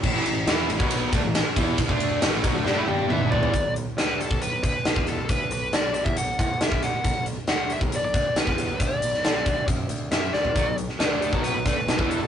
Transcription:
<<
  \new Staff \with { instrumentName = "Lead electric guitar" } { \time 4/4 \key b \minor \tempo 4 = 137 r1 | r2. e''8 d''8~ | d''8 r8 b'8 a'8 b'8 b'4 a'8 | b'8 b'8 d''8 d''16 e''16 fis''4 e''8 fis''8~ |
fis''8 r8 fis''8 e''8 d''16 d''8. b'4 | d''2 r4 e''8 d''8~ | d''8 r8 b'8 a'8 b'8 b'4 a'8 | }
  \new Staff \with { instrumentName = "Overdriven electric guitar" } { \clef bass \time 4/4 \key b \minor <a, e>16 <a, e>16 <a, e>8 <e b e'>8 <a, e>16 <b, fis b>8. <d a>16 <a, e>8 r16 <e b e'>8 | r16 <d a d'>8. <a, e a>8 <b, fis>16 <d a>16 <g d'>16 <a e'>16 <g d' g'>8 <e b>16 <g, d>16 <a, e>16 <e b>16 | r1 | r1 |
r1 | r1 | <b, fis>16 <b, fis>8 r16 <d a d'>8. <b, fis b>8 <b, fis>16 <d a>16 r16 <b, fis>16 <e b e'>8 <b, fis>16 | }
  \new Staff \with { instrumentName = "Picked electric bass" } { \clef bass \time 4/4 \key b \minor a,,16 a,,16 a,,8 e,8 a,,16 b,,8. d,16 a,,8 r16 e,8 | r16 d,8. a,,8 b,,16 d,16 g,16 a,16 g,8 e,16 g,,16 a,,16 e,16 | b,,16 b,,8 r16 d,8. b,,8 b,,16 d,16 r16 b,,16 e,8 b,,16 | d,8 b,,8 b,,8. e,16 b,,8 a,16 b,,16 b,,16 b,,16 b,,16 r16 |
b,,16 b,,8 r16 d,8. b,,8 b,,16 d,16 r16 b,,16 e,8 b,,16 | d,8 b,,8 b,,8 d,8 fis,8 d,8 fis,8 d,16 b,,16 | b,,16 b,,8 r16 d,8. b,,8 b,,16 d,16 r16 b,,16 e,8 b,,16 | }
  \new DrumStaff \with { instrumentName = "Drums" } \drummode { \time 4/4 <cymc bd>8 cymr8 <cymr sn>8 cymr16 bd16 cymr8 <bd cymr sn>8 <cymr sn>8 <bd cymr>8 | <bd cymr>16 bd16 cymr8 <cymr sn>8 <bd cymr>8 sn8 tommh16 tommh16 toml8 tomfh16 tomfh16 | <hh bd>8 hh8 <hh sn>8 hh16 bd16 hh8 <hh bd>8 <hh sn>16 bd16 <hh sn>8 | <hh bd>8 hh8 <hh sn>8 hh16 bd16 hh8 <hh bd>8 <hh sn>16 bd16 <hh sn>8 |
<hh bd>8 hh8 <hh sn>8 hh16 bd16 hh8 <hh bd>8 <hh sn>16 bd16 <hh sn>8 | <hh bd>8 hh16 sn16 <hh sn>8 <hh bd>8 <hh bd>8 hh8 <hh sn>8 sn16 tomfh16 | <hh bd>8 hh16 sn16 <hh sn>8 hh16 bd16 hh8 <hh bd>8 <hh sn>16 bd16 hh8 | }
>>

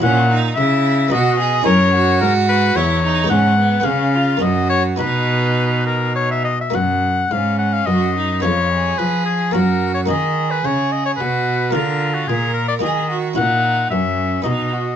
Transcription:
<<
  \new Staff \with { instrumentName = "Oboe" } { \time 3/4 \key b \major \tempo 4 = 109 fis''8. r16 e''4 dis''4 | cis''4 ais'8 b'8 cis''4 | fis''4 eis''4 dis''8 cis''8 | b'4. ais'8 cis''16 e''16 dis''16 e''16 |
\key fis \major fis''4 eis''8 fis''16 eis''16 dis''4 | cis''4 b'8 gis'8 ais'8. cis''16 | dis''8. b'16 cis''8 dis''16 cis''16 b'4 | ais'8. fis'16 gis'8 ais'16 d''16 dis''8. r16 |
\key fis \mixolydian fis''4 e''4 dis''4 | }
  \new Staff \with { instrumentName = "Violin" } { \time 3/4 \key b \major cis'8 dis'8 e'4 fis'8 gis'8 | ais'8 fis'4. e'8 dis'8 | cis'8 b8 cis'8 eis'8 fis'4 | dis'2~ dis'8 r8 |
\key fis \major r4 cis'4 fis'8 dis'8 | eis'8 gis'4. fis'4 | gis'2 fis'4 | eis'4 ais'4 gis'8 fis'8 |
\key fis \mixolydian dis'4 cis'4 dis'8 fis'8 | }
  \new Staff \with { instrumentName = "Harpsichord" } { \time 3/4 \key b \major <cis' e' fis'>2 <b dis' fis'>4 | <cis' e' ais'>2. | <gis b dis' gis'>4 <b cis' gis'>4 <ais cis' fis'>4 | <b dis' fis'>2. |
\key fis \major <ais cis' fis'>2. | <b cis' gis'>2 <ais cis' fis'>4 | <ais dis' fis'>2. | <ais eis' gis'>2 <ais dis' fis'>4 |
\key fis \mixolydian <cis' e' fis'>2 <b dis' fis'>4 | }
  \new Staff \with { instrumentName = "Harpsichord" } { \clef bass \time 3/4 \key b \major ais,4 cis4 b,4 | fis,4 gis,4 e,4 | gis,4 cis4 fis,4 | b,2~ b,8 r8 |
\key fis \major fis,4 gis,4 fis,4 | eis,4 eis4 fis,4 | dis4 cis4 b,4 | d4 ais,4 dis4 |
\key fis \mixolydian ais,4 fis,4 b,4 | }
  \new Staff \with { instrumentName = "Cello" } { \clef bass \time 3/4 \key b \major ais,4 cis4 b,4 | fis,4 gis,4 e,4 | gis,4 cis4 fis,4 | b,2~ b,8 r8 |
\key fis \major fis,4 gis,4 fis,4 | eis,4 eis4 fis,4 | dis4 cis4 b,4 | d4 ais,4 dis4 |
\key fis \mixolydian ais,4 fis,4 b,4 | }
>>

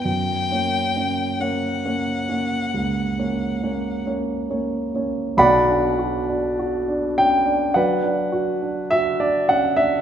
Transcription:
<<
  \new Staff \with { instrumentName = "Violin" } { \time 4/4 \key b \minor \tempo 4 = 48 g''4 fis''2 r4 | r1 | }
  \new Staff \with { instrumentName = "Grand piano" } { \time 4/4 \key b \minor << { r1 | <d'' fis'' b''>4. g''8 <b' d'' fis''>4 e''16 d''16 fis''16 e''16 | } \\ { \tuplet 3/2 { fis,8 <ais cis' cis''>8 <ais cis' cis''>8 <ais cis' cis''>8 <ais cis' cis''>8 <ais cis' cis''>8 cis,8 <ais cis' cis''>8 <ais cis' cis''>8 <ais cis' cis''>8 <ais cis' cis''>8 <ais cis' cis''>8 } | <b,, b,>16 d'16 fis'16 d'16 fis'16 d'16 cis'16 d'16 fis16 d'16 fis'16 d'16 fis'16 d'16 cis'16 d'16 | } >> }
>>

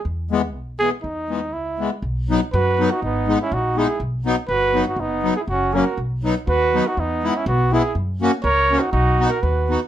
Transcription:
<<
  \new Staff \with { instrumentName = "Trumpet" } { \time 2/4 \key e \major \tempo 4 = 122 r4. gis'8 | dis'4 e'8. r16 | \key b \major r4 b'8. fis'16 | dis'8. e'16 fis'8 gis'8 |
r4 b'8. fis'16 | dis'8. gis'16 fis'8 ais'8 | r4 b'8. fis'16 | dis'8. e'16 fis'8 gis'8 |
r4 cis''8. fis'16 | fis'8. ais'16 b'8. r16 | }
  \new Staff \with { instrumentName = "Trumpet" } { \time 2/4 \key e \major r2 | r2 | \key b \major r4 fis'8. dis'16 | b8. cis'16 dis'8 e'8 |
r4 fis'8. dis'16 | b8. e'16 cis'8 fis'8 | r4 fis'8. dis'16 | b8. cis'16 b8 e'8 |
r4 ais'8. dis'16 | dis'8. fis'16 fis'8. r16 | }
  \new Staff \with { instrumentName = "Accordion" } { \time 2/4 \key e \major r8 <e gis b>8 r8 <e gis b>8 | r8 <e gis b>8 r8 <e gis b>8 | \key b \major r8 <fis b dis'>8 r8 <fis b dis'>8 | r8 <gis b dis'>8 r8 <gis b dis'>8 |
r8 <fis b dis'>8 r8 <fis b dis'>8 | r8 <fis b dis'>8 r8 <fis ais cis'>8 | r8 <fis b dis'>8 r8 <fis b dis'>8 | r8 <gis b e'>8 r8 <gis b e'>8 |
r8 <ais cis' fis'>8 r8 <ais cis' fis'>8 | r8 <b dis' fis'>8 r8 <b dis' fis'>8 | }
  \new Staff \with { instrumentName = "Upright bass" } { \clef bass \time 2/4 \key e \major e,4 b,,4 | e,4 cis,4 | \key b \major b,,4 fis,4 | gis,,4 ais,,4 |
b,,4 g,,4 | fis,,4 fis,,4 | b,,4 dis,4 | e,4 b,,4 |
fis,4 cis,4 | b,,4 dis,4 | }
>>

